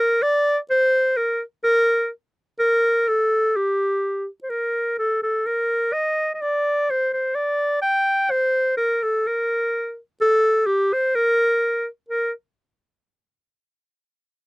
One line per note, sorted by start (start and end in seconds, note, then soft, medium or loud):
0.00 0.24 A#4 loud
0.23 0.58 D5 loud
0.70 1.18 C5 loud
1.17 1.41 A#4 medium
1.64 2.08 A#4 loud
2.59 3.10 A#4 loud
3.08 3.58 A4 medium
3.56 4.27 G4 medium
4.43 4.51 C5 medium
4.50 4.97 A#4 medium
4.98 5.20 A4 medium
5.23 5.48 A4 medium
5.46 5.94 A#4 medium
5.93 6.34 D#5 medium
6.34 6.43 D#5 soft
6.41 6.92 D5 medium
6.90 7.13 C5 medium
7.13 7.36 C5 medium
7.35 7.81 D5 medium
7.82 8.32 G5 medium
8.30 8.77 C5 loud
8.77 9.04 A#4 medium
9.03 9.28 A4 medium
9.27 9.98 A#4 medium
10.21 10.68 A4 loud
10.66 10.95 G4 medium
10.93 11.17 C5 medium
11.15 11.86 A#4 loud
12.09 12.32 A#4 medium